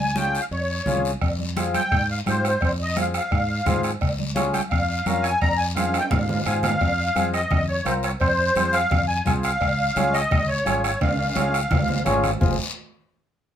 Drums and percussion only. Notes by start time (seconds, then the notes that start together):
0.16 cowbell, high conga, short guiro
0.35 short guiro
0.51 cowbell, high conga, long guiro
0.86 cowbell, high conga, low conga, low timbale, short guiro
1.05 short guiro
1.21 bombo low, bombo rim, cowbell, high conga, long guiro
1.39 high conga
1.57 bombo rim, cowbell, high conga, short guiro
1.74 bombo rim, high conga, short guiro
1.91 bombo low, bombo rim, cowbell, long guiro
2.26 bombo rim, cowbell, high conga, short guiro
2.45 bombo rim, short guiro
2.61 bombo low, bombo rim, cowbell, high conga, long guiro
2.96 bombo rim, cowbell, high conga, short guiro
3.14 bombo rim, short guiro
3.31 bombo low, bombo rim, cowbell, long guiro
3.66 bombo low, bombo rim, cowbell, high conga, low conga, low timbale, short guiro
3.83 bombo rim, short guiro
4.01 bombo low, bombo rim, cowbell, high conga, long guiro
4.19 high conga
4.36 bombo rim, cowbell, high conga, short guiro
4.54 bombo rim, high conga, short guiro
4.71 bombo low, bombo rim, cowbell, high conga, long guiro
5.06 bombo rim, cowbell, high conga, short guiro
5.24 bombo rim, short guiro
5.41 bombo low, bombo rim, cowbell, high conga, long guiro
5.76 bombo rim, cowbell, high conga, high timbale, short guiro
5.94 bombo rim, high timbale, short guiro
6.11 bombo low, bombo rim, cowbell, low conga, low timbale, long guiro
6.29 low conga, low timbale
6.46 bombo rim, cowbell, low conga, short guiro
6.63 bombo rim, low conga, low timbale, short guiro
6.81 bombo low, bombo rim, cowbell, high conga, long guiro
7.16 bombo rim, cowbell, high conga, short guiro
7.34 bombo rim, short guiro
7.51 bombo low, bombo rim, cowbell, high conga, low conga, long guiro
7.86 bombo rim, cowbell, high conga, short guiro
8.03 bombo rim, short guiro
8.20 bombo low, bombo rim, cowbell, high conga, long guiro
8.56 bombo rim, cowbell, high conga, short guiro
8.73 bombo rim, short guiro
8.90 bombo low, bombo rim, cowbell, high conga, low conga, long guiro
9.26 bombo low, bombo rim, cowbell, high conga, short guiro
9.43 bombo rim, short guiro
9.61 bombo low, bombo rim, cowbell, high conga, long guiro
9.96 bombo rim, cowbell, high conga, short guiro
10.14 bombo rim, short guiro
10.31 bombo low, bombo rim, cowbell, high conga, low conga, long guiro
10.66 bombo rim, cowbell, high conga, short guiro
10.84 bombo rim, short guiro
11.01 bombo low, bombo rim, cowbell, high conga, low conga, high timbale, long guiro
11.19 high timbale
11.36 bombo rim, cowbell, high conga, high timbale, short guiro
11.54 bombo rim, short guiro
11.71 bombo low, bombo rim, cowbell, low conga, low timbale, long guiro
11.88 low conga, low timbale
12.06 bombo rim, cowbell, low conga, low timbale, short guiro
12.24 bombo rim, low conga, low timbale, short guiro
12.41 bombo low, low conga, low timbale, long guiro